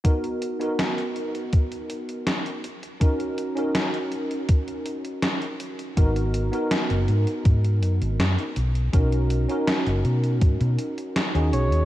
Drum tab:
HH |xxxxxxxxxxxxxxxx|xxxxxxxxxxxxxxxx|xxxxxxxxxxxxxxxx|xxxxxxxxxxxxxxxx|
SD |----o-------o---|----o-------o---|----o-------o---|----o-------o---|
BD |o-------o-------|o-------o-------|o-------o-------|o-------o-------|